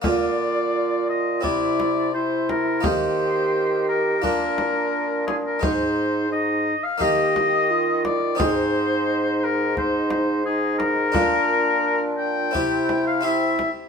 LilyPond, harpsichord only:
<<
  \new Staff \with { instrumentName = "Harpsichord" } { \time 4/4 \key bes \mixolydian \tempo 4 = 86 <d bes f'>2 <c' e'>2 | <bes ees'>2 <bes d'>2 | <aes ees'>2 <bes ees' g'>2 | <c' ees' aes'>1 |
<d' f'>2 <c' e' g'>4 <c' e' g'>4 | }
  \new Staff \with { instrumentName = "Harpsichord" } { \clef bass \time 4/4 \key bes \mixolydian bes,2 c2 | ees2 bes,2 | aes,4. r8 ees2 | aes,1 |
bes,2 c4. r8 | }
>>